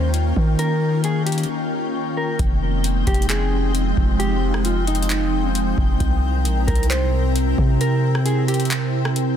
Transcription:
0.00 0.33 D#2 loud
0.00 2.36 D#3 medium
0.00 2.36 A#3 medium
0.00 2.36 C#4 medium
0.00 2.36 F4 medium
0.00 0.11 C5 medium
0.00 2.35 G5 medium
0.14 closed hi-hat medium
0.36 1.45 D#3 loud
0.36 kick medium
0.59 1.01 A#4 loud
0.59 closed hi-hat medium
1.04 1.26 G#4 medium
1.04 closed hi-hat medium
1.26 1.48 G4 medium
1.26 closed hi-hat medium
1.32 closed hi-hat medium
1.38 closed hi-hat medium
1.43 closed hi-hat soft
2.17 2.38 A#4 medium
2.39 3.04 F1 loud
2.39 5.97 F3 medium
2.39 5.97 G#3 medium
2.39 9.37 C4 medium
2.39 5.97 D#4 medium
2.39 9.37 G5 medium
2.39 kick loud
2.39 closed hi-hat medium
2.84 closed hi-hat medium
3.07 3.94 F1 loud
3.07 3.29 G4 medium
3.07 kick loud
3.07 closed hi-hat medium
3.14 closed hi-hat medium
3.22 closed hi-hat medium
3.30 3.72 G#4 medium
3.30 clap loud
3.30 closed hi-hat medium
3.75 closed hi-hat medium
3.97 5.74 F1 loud
3.97 kick medium
4.19 4.62 G4 loud
4.19 closed hi-hat medium
4.54 cross-stick medium
4.65 4.86 F4 medium
4.65 closed hi-hat medium
4.87 5.51 D#4 medium
4.87 closed hi-hat medium
4.95 closed hi-hat medium
5.03 closed hi-hat medium
5.10 clap loud
5.10 closed hi-hat medium
5.55 closed hi-hat medium
5.78 5.99 F1 loud
5.78 kick loud
6.00 6.47 C2 loud
6.00 9.37 C3 medium
6.00 9.37 E4 medium
6.00 9.37 A#4 medium
6.00 kick loud
6.00 closed hi-hat medium
6.45 6.67 A#1 loud
6.45 closed hi-hat medium
6.67 7.55 C2 loud
6.67 6.89 A#4 medium
6.67 kick loud
6.67 closed hi-hat medium
6.76 closed hi-hat medium
6.83 closed hi-hat medium
6.90 7.33 C5 medium
6.90 clap loud
6.90 closed hi-hat medium
7.36 closed hi-hat medium
7.58 9.35 C3 loud
7.58 kick loud
7.81 8.23 A#4 loud
7.81 closed hi-hat medium
8.15 cross-stick medium
8.26 8.47 G#4 medium
8.26 closed hi-hat medium
8.48 8.70 G4 medium
8.48 closed hi-hat medium
8.54 closed hi-hat medium
8.60 closed hi-hat medium
8.65 closed hi-hat soft
8.71 clap loud
8.71 closed hi-hat medium
9.05 cross-stick loud
9.16 closed hi-hat medium

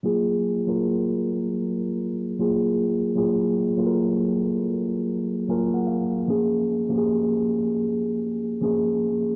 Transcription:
0.03 0.41 F#3 medium
0.03 0.41 A#3 medium
0.03 0.42 F4 medium
0.03 0.42 G#4 medium
0.67 1.59 F#3 medium
0.67 1.60 A#3 medium
0.67 1.60 F4 medium
0.67 1.60 A#4 medium
2.39 2.90 F#3 medium
2.39 2.90 A#3 medium
2.39 2.90 F4 medium
2.39 2.91 G#4 medium
3.15 3.53 F#3 medium
3.15 3.53 A#3 medium
3.15 3.54 F4 medium
3.15 3.54 G#4 medium
3.77 4.70 F#3 medium
3.77 4.71 A#3 medium
3.77 4.71 F4 medium
3.77 3.82 A4 medium
3.86 4.75 A#4 medium
5.48 6.00 F#3 medium
5.48 6.01 A#3 medium
5.48 6.01 F4 medium
5.48 6.01 A#4 medium
5.48 5.73 G#5 medium
5.74 5.88 F#5 medium
5.87 6.24 F5 medium
6.27 6.65 F3 medium
6.27 6.65 A#3 medium
6.27 6.66 C#4 medium
6.27 6.66 G#4 medium
6.89 7.82 F3 medium
6.89 7.83 A#3 medium
6.89 7.83 C#4 medium
6.89 6.93 G4 medium
6.98 7.87 G#4 medium
8.61 9.12 F3 medium
8.61 9.13 A#3 medium
8.61 9.13 C#4 medium
8.61 9.14 G#4 medium

